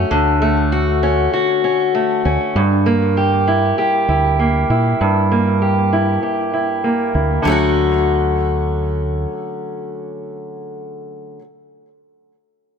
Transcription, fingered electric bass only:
0.11 D2
2.25 D2
2.55 G2
4.08 D2
4.70 A#2
5.01 G2
7.15 D2
7.45 D2

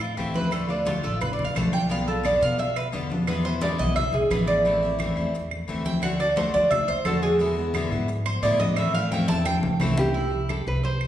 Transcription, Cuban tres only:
0.01 F4
0.17 G4
0.35 B4
0.52 A4
0.70 D4
0.87 F4
1.04 A4
1.21 B4
1.33 D5
1.45 F5
1.56 A5
1.73 G5
1.91 F5
2.08 A4
2.25 D5
2.42 F5
2.59 E5
2.77 B4
3.28 B4
3.45 C5
3.62 D5
3.79 D#5
3.96 E5
4.14 G#4
4.31 B4
4.47 D5
5.86 G5
6.03 F#5
6.20 D5
6.37 C5
6.54 D5
6.71 E5
6.88 C5
7.05 A4
7.23 G#4
8.26 C5
8.43 D5
8.60 D#5
8.77 E5
8.95 F5
9.12 G5
9.28 A5
9.45 G5
10.14 E4
10.49 G4
10.83 C5

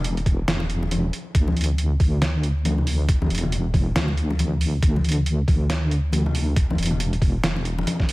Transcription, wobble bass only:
Already playing: E1
0.48 E1
1.35 D2
2.00 D2
3.30 E1
3.96 D2
4.83 D2
5.48 D2
6.78 E1
7.43 E1

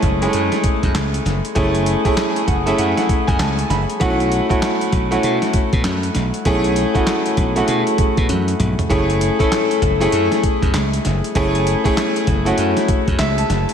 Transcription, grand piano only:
Already playing: G#3 A3 C#4 E4 G#4
0.21 G#3 C#4 E4 G#4
0.28 A3
1.55 A3 C#4 E4 G#4
2.05 A3 C#4 E4 G#4
2.48 F#5
2.66 A3 C#4 E4 G#4 E5
2.78 F#5
2.97 F#5
3.27 G#5
3.39 A5
3.70 B5
4.00 A3 C#4 E4 F#4
4.49 A3 C#4 E4 F#4
5.11 A3 C#4 E4 F#4
6.46 A3 C#4 E4 G#4
6.94 A3 C#4 E4 F#4
7.56 A3 C#4 E4 F#4
8.89 A3 C#4 E4 G#4
9.39 A3 C#4 E4 A4
10.00 A3 C#4 E4 G#4
11.35 A3 C#4 E4 G#4
11.84 A3 C#4 E4 G#4
12.45 A3 C#4 E4 F#4
13.19 E5
13.38 A5

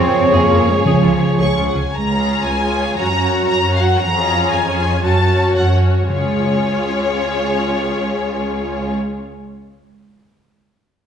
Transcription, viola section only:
0.32 G#4
0.50 F4
0.67 C#4
0.86 G#4
1.03 F4
1.39 G#4
1.57 F4
1.75 C#4
2.11 C#4 F4
2.63 C#4 F4
2.97 C#4 F#4
3.14 C#4 F#4
3.65 C#4 F#4
4.16 C#4 F4
4.68 C#4 F4
5.03 C#4 F#4
5.21 C#4 F#4
5.74 C#4 F#4
6.10 C#4 F4

